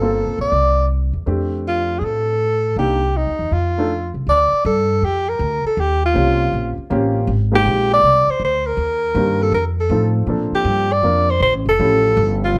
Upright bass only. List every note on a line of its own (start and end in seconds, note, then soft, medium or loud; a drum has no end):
0.00 0.23 G1 medium
0.26 0.38 A1 medium
0.39 0.50 A#1 medium
0.52 1.10 C2 medium
1.13 1.25 E2 medium
1.27 1.98 F2 medium
2.01 2.73 A2 medium
2.76 3.23 C2 medium
3.27 3.39 D#2 medium
3.39 3.51 E2 medium
3.51 4.10 F2 medium
4.14 4.26 C2 medium
4.27 4.50 D2 medium
4.52 muted upright bass stroke soft
4.65 5.01 G2 loud
5.02 5.39 F2 medium
5.39 5.62 D2 medium
5.64 muted upright bass stroke soft
5.77 6.14 D#2 medium
6.16 6.52 C2 loud
6.53 6.76 A#1 medium
6.78 muted upright bass stroke soft
6.90 7.27 A1 medium
7.27 7.64 G#1 medium
7.66 8.02 A#1 loud
8.03 8.25 C2 medium
8.27 muted upright bass stroke soft
8.40 8.76 D2 medium
8.77 9.14 D#2 medium
9.15 9.51 G2 loud
9.52 9.89 F2 medium
9.89 10.26 A2 medium
10.27 10.50 A#2 medium
10.52 muted upright bass stroke soft
10.65 11.02 G2 loud
11.03 11.40 F2 medium
11.40 11.53 A#1 medium
11.53 11.65 A1 soft
11.65 11.77 F1 medium
11.79 12.16 A1 medium
12.17 12.53 G1 loud
12.54 12.59 A1 medium